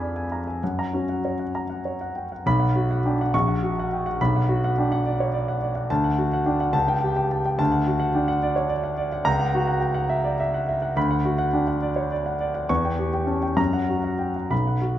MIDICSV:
0, 0, Header, 1, 2, 480
1, 0, Start_track
1, 0, Key_signature, 2, "minor"
1, 0, Tempo, 607903
1, 484, Time_signature, 6, 3, 24, 8
1, 1936, Tempo, 580833
1, 3376, Tempo, 564972
1, 10096, Tempo, 591133
1, 11536, Tempo, 632911
1, 12377, End_track
2, 0, Start_track
2, 0, Title_t, "Grand piano"
2, 0, Program_c, 0, 0
2, 0, Control_c, 0, 64, 127
2, 0, Note_on_c, 0, 41, 58
2, 0, Note_on_c, 0, 62, 49
2, 0, Note_on_c, 0, 68, 47
2, 0, Note_on_c, 0, 74, 41
2, 0, Note_on_c, 0, 80, 42
2, 0, Note_on_c, 0, 83, 49
2, 12, Note_off_c, 0, 74, 0
2, 12, Note_on_c, 0, 74, 39
2, 81, Note_off_c, 0, 80, 0
2, 127, Note_on_c, 0, 80, 39
2, 196, Note_off_c, 0, 74, 0
2, 252, Note_on_c, 0, 82, 35
2, 314, Note_off_c, 0, 80, 0
2, 367, Note_off_c, 0, 82, 0
2, 374, Note_on_c, 0, 80, 39
2, 453, Note_off_c, 0, 41, 0
2, 489, Note_off_c, 0, 80, 0
2, 497, Control_c, 0, 64, 0
2, 499, Note_off_c, 0, 62, 0
2, 500, Note_on_c, 0, 78, 43
2, 501, Note_on_c, 0, 42, 45
2, 502, Note_off_c, 0, 68, 0
2, 504, Note_off_c, 0, 83, 0
2, 622, Note_on_c, 0, 82, 52
2, 636, Control_c, 0, 64, 127
2, 688, Note_off_c, 0, 78, 0
2, 737, Note_on_c, 0, 66, 39
2, 743, Note_on_c, 0, 61, 38
2, 810, Note_off_c, 0, 82, 0
2, 861, Note_on_c, 0, 78, 42
2, 928, Note_off_c, 0, 66, 0
2, 985, Note_on_c, 0, 73, 37
2, 1050, Note_off_c, 0, 78, 0
2, 1100, Note_on_c, 0, 78, 39
2, 1125, Note_off_c, 0, 61, 0
2, 1172, Note_off_c, 0, 73, 0
2, 1224, Note_on_c, 0, 82, 42
2, 1290, Note_off_c, 0, 78, 0
2, 1339, Note_on_c, 0, 78, 41
2, 1412, Note_off_c, 0, 82, 0
2, 1463, Note_on_c, 0, 73, 37
2, 1531, Note_off_c, 0, 78, 0
2, 1587, Note_on_c, 0, 78, 40
2, 1653, Note_off_c, 0, 73, 0
2, 1704, Note_on_c, 0, 79, 32
2, 1776, Note_off_c, 0, 78, 0
2, 1821, Note_off_c, 0, 79, 0
2, 1833, Note_on_c, 0, 78, 40
2, 1913, Note_off_c, 0, 42, 0
2, 1944, Note_off_c, 0, 78, 0
2, 1944, Note_on_c, 0, 35, 65
2, 1948, Note_on_c, 0, 83, 81
2, 1954, Control_c, 0, 64, 0
2, 2055, Note_on_c, 0, 78, 56
2, 2105, Control_c, 0, 64, 127
2, 2138, Note_off_c, 0, 83, 0
2, 2189, Note_on_c, 0, 66, 55
2, 2252, Note_off_c, 0, 78, 0
2, 2313, Note_on_c, 0, 78, 59
2, 2378, Note_off_c, 0, 66, 0
2, 2435, Note_on_c, 0, 62, 48
2, 2437, Note_on_c, 0, 79, 44
2, 2500, Note_off_c, 0, 78, 0
2, 2549, Note_off_c, 0, 79, 0
2, 2564, Note_on_c, 0, 78, 56
2, 2620, Note_off_c, 0, 62, 0
2, 2643, Note_off_c, 0, 35, 0
2, 2670, Note_on_c, 0, 85, 77
2, 2672, Note_off_c, 0, 78, 0
2, 2673, Note_on_c, 0, 34, 65
2, 2676, Control_c, 0, 64, 0
2, 2785, Note_on_c, 0, 78, 54
2, 2825, Control_c, 0, 64, 127
2, 2857, Note_off_c, 0, 85, 0
2, 2908, Note_on_c, 0, 66, 51
2, 2974, Note_off_c, 0, 78, 0
2, 3045, Note_on_c, 0, 78, 54
2, 3095, Note_off_c, 0, 66, 0
2, 3160, Note_on_c, 0, 79, 45
2, 3223, Note_off_c, 0, 78, 0
2, 3265, Note_on_c, 0, 78, 57
2, 3269, Note_off_c, 0, 79, 0
2, 3362, Note_off_c, 0, 34, 0
2, 3381, Note_off_c, 0, 78, 0
2, 3390, Control_c, 0, 64, 0
2, 3390, Note_on_c, 0, 35, 62
2, 3390, Note_on_c, 0, 83, 75
2, 3516, Note_on_c, 0, 78, 53
2, 3539, Control_c, 0, 64, 127
2, 3579, Note_off_c, 0, 83, 0
2, 3626, Note_on_c, 0, 66, 57
2, 3703, Note_off_c, 0, 78, 0
2, 3757, Note_on_c, 0, 78, 57
2, 3818, Note_off_c, 0, 66, 0
2, 3874, Note_on_c, 0, 62, 52
2, 3879, Note_on_c, 0, 79, 45
2, 3943, Note_off_c, 0, 78, 0
2, 3990, Note_on_c, 0, 78, 60
2, 3991, Note_off_c, 0, 79, 0
2, 4060, Note_off_c, 0, 62, 0
2, 4110, Note_on_c, 0, 74, 57
2, 4177, Note_off_c, 0, 78, 0
2, 4233, Note_on_c, 0, 73, 50
2, 4295, Note_off_c, 0, 74, 0
2, 4345, Note_off_c, 0, 73, 0
2, 4346, Note_on_c, 0, 74, 53
2, 4471, Note_on_c, 0, 78, 55
2, 4533, Note_off_c, 0, 74, 0
2, 4586, Note_on_c, 0, 74, 52
2, 4657, Note_off_c, 0, 78, 0
2, 4700, Note_on_c, 0, 78, 54
2, 4776, Note_off_c, 0, 74, 0
2, 4793, Note_off_c, 0, 35, 0
2, 4822, Note_off_c, 0, 78, 0
2, 4827, Note_on_c, 0, 81, 77
2, 4829, Note_on_c, 0, 38, 66
2, 4834, Control_c, 0, 64, 0
2, 4945, Note_on_c, 0, 78, 58
2, 4978, Control_c, 0, 64, 127
2, 5019, Note_off_c, 0, 81, 0
2, 5065, Note_on_c, 0, 66, 52
2, 5137, Note_off_c, 0, 78, 0
2, 5193, Note_on_c, 0, 78, 57
2, 5256, Note_off_c, 0, 66, 0
2, 5302, Note_on_c, 0, 62, 51
2, 5304, Note_on_c, 0, 79, 48
2, 5378, Note_off_c, 0, 78, 0
2, 5421, Note_off_c, 0, 79, 0
2, 5422, Note_on_c, 0, 78, 59
2, 5492, Note_off_c, 0, 62, 0
2, 5522, Note_off_c, 0, 38, 0
2, 5531, Note_on_c, 0, 81, 81
2, 5533, Note_on_c, 0, 37, 63
2, 5540, Note_off_c, 0, 78, 0
2, 5553, Control_c, 0, 64, 0
2, 5660, Note_on_c, 0, 79, 64
2, 5708, Control_c, 0, 64, 127
2, 5728, Note_off_c, 0, 81, 0
2, 5785, Note_on_c, 0, 67, 55
2, 5855, Note_off_c, 0, 79, 0
2, 5899, Note_on_c, 0, 79, 59
2, 5979, Note_off_c, 0, 67, 0
2, 6024, Note_on_c, 0, 81, 51
2, 6095, Note_off_c, 0, 79, 0
2, 6145, Note_off_c, 0, 81, 0
2, 6146, Note_on_c, 0, 79, 60
2, 6239, Note_off_c, 0, 37, 0
2, 6256, Note_on_c, 0, 38, 65
2, 6258, Note_on_c, 0, 81, 82
2, 6265, Note_off_c, 0, 79, 0
2, 6278, Control_c, 0, 64, 0
2, 6369, Note_on_c, 0, 78, 56
2, 6429, Control_c, 0, 64, 127
2, 6449, Note_off_c, 0, 81, 0
2, 6497, Note_on_c, 0, 66, 53
2, 6563, Note_off_c, 0, 78, 0
2, 6605, Note_on_c, 0, 78, 61
2, 6688, Note_off_c, 0, 66, 0
2, 6734, Note_on_c, 0, 79, 48
2, 6735, Note_on_c, 0, 62, 53
2, 6803, Note_off_c, 0, 78, 0
2, 6847, Note_on_c, 0, 78, 64
2, 6856, Note_off_c, 0, 79, 0
2, 6928, Note_off_c, 0, 62, 0
2, 6972, Note_on_c, 0, 74, 61
2, 7045, Note_off_c, 0, 78, 0
2, 7085, Note_on_c, 0, 73, 52
2, 7166, Note_off_c, 0, 74, 0
2, 7196, Note_on_c, 0, 74, 57
2, 7210, Note_off_c, 0, 73, 0
2, 7318, Note_on_c, 0, 78, 57
2, 7394, Note_off_c, 0, 74, 0
2, 7438, Note_on_c, 0, 74, 59
2, 7513, Note_off_c, 0, 78, 0
2, 7565, Note_on_c, 0, 78, 59
2, 7631, Note_off_c, 0, 74, 0
2, 7646, Note_off_c, 0, 38, 0
2, 7670, Note_on_c, 0, 82, 85
2, 7674, Note_on_c, 0, 37, 73
2, 7683, Note_off_c, 0, 78, 0
2, 7700, Control_c, 0, 64, 0
2, 7795, Note_on_c, 0, 78, 60
2, 7813, Control_c, 0, 64, 127
2, 7866, Note_off_c, 0, 82, 0
2, 7923, Note_on_c, 0, 66, 63
2, 7988, Note_off_c, 0, 78, 0
2, 8030, Note_on_c, 0, 78, 59
2, 8113, Note_off_c, 0, 66, 0
2, 8138, Note_on_c, 0, 79, 49
2, 8227, Note_off_c, 0, 78, 0
2, 8261, Note_on_c, 0, 78, 64
2, 8270, Note_off_c, 0, 79, 0
2, 8388, Note_on_c, 0, 76, 62
2, 8463, Note_off_c, 0, 78, 0
2, 8513, Note_on_c, 0, 74, 55
2, 8587, Note_off_c, 0, 76, 0
2, 8638, Note_off_c, 0, 74, 0
2, 8646, Note_on_c, 0, 76, 61
2, 8769, Note_on_c, 0, 78, 58
2, 8837, Note_off_c, 0, 76, 0
2, 8890, Note_on_c, 0, 76, 60
2, 8958, Note_off_c, 0, 78, 0
2, 9005, Note_on_c, 0, 78, 57
2, 9079, Note_off_c, 0, 76, 0
2, 9085, Note_off_c, 0, 37, 0
2, 9125, Note_off_c, 0, 78, 0
2, 9128, Note_on_c, 0, 38, 67
2, 9132, Note_on_c, 0, 83, 73
2, 9139, Control_c, 0, 64, 0
2, 9249, Note_on_c, 0, 78, 61
2, 9299, Control_c, 0, 64, 127
2, 9321, Note_off_c, 0, 83, 0
2, 9372, Note_on_c, 0, 66, 55
2, 9440, Note_off_c, 0, 78, 0
2, 9484, Note_on_c, 0, 78, 65
2, 9563, Note_off_c, 0, 66, 0
2, 9610, Note_on_c, 0, 62, 51
2, 9611, Note_on_c, 0, 79, 46
2, 9680, Note_off_c, 0, 78, 0
2, 9732, Note_off_c, 0, 79, 0
2, 9732, Note_on_c, 0, 78, 59
2, 9805, Note_off_c, 0, 62, 0
2, 9856, Note_on_c, 0, 74, 58
2, 9928, Note_off_c, 0, 78, 0
2, 9975, Note_on_c, 0, 73, 49
2, 10052, Note_off_c, 0, 74, 0
2, 10099, Note_off_c, 0, 73, 0
2, 10107, Note_on_c, 0, 74, 56
2, 10222, Note_on_c, 0, 78, 55
2, 10293, Note_off_c, 0, 74, 0
2, 10341, Note_on_c, 0, 74, 57
2, 10409, Note_off_c, 0, 78, 0
2, 10452, Note_on_c, 0, 78, 54
2, 10527, Note_off_c, 0, 74, 0
2, 10542, Note_off_c, 0, 38, 0
2, 10571, Note_off_c, 0, 78, 0
2, 10575, Note_on_c, 0, 85, 75
2, 10576, Note_on_c, 0, 40, 65
2, 10586, Control_c, 0, 64, 0
2, 10701, Note_on_c, 0, 79, 58
2, 10726, Control_c, 0, 64, 127
2, 10763, Note_off_c, 0, 85, 0
2, 10815, Note_on_c, 0, 67, 53
2, 10887, Note_off_c, 0, 79, 0
2, 10934, Note_on_c, 0, 79, 57
2, 11004, Note_off_c, 0, 67, 0
2, 11038, Note_on_c, 0, 61, 42
2, 11040, Note_on_c, 0, 81, 36
2, 11125, Note_off_c, 0, 79, 0
2, 11166, Note_off_c, 0, 81, 0
2, 11169, Note_on_c, 0, 79, 51
2, 11238, Note_off_c, 0, 61, 0
2, 11273, Note_off_c, 0, 40, 0
2, 11282, Note_on_c, 0, 42, 59
2, 11284, Note_on_c, 0, 82, 67
2, 11292, Note_off_c, 0, 79, 0
2, 11310, Control_c, 0, 64, 0
2, 11418, Note_on_c, 0, 78, 54
2, 11441, Control_c, 0, 64, 127
2, 11486, Note_off_c, 0, 82, 0
2, 11548, Note_on_c, 0, 66, 49
2, 11611, Note_off_c, 0, 78, 0
2, 11659, Note_on_c, 0, 78, 48
2, 11732, Note_off_c, 0, 66, 0
2, 11773, Note_on_c, 0, 79, 43
2, 11847, Note_off_c, 0, 78, 0
2, 11893, Note_off_c, 0, 79, 0
2, 11904, Note_on_c, 0, 78, 43
2, 11988, Note_off_c, 0, 42, 0
2, 12011, Note_on_c, 0, 35, 52
2, 12013, Note_on_c, 0, 83, 61
2, 12020, Note_off_c, 0, 78, 0
2, 12030, Control_c, 0, 64, 0
2, 12139, Note_on_c, 0, 78, 45
2, 12193, Control_c, 0, 64, 127
2, 12209, Note_off_c, 0, 83, 0
2, 12246, Note_on_c, 0, 66, 44
2, 12333, Note_off_c, 0, 78, 0
2, 12377, Note_off_c, 0, 35, 0
2, 12377, Note_off_c, 0, 66, 0
2, 12377, End_track
0, 0, End_of_file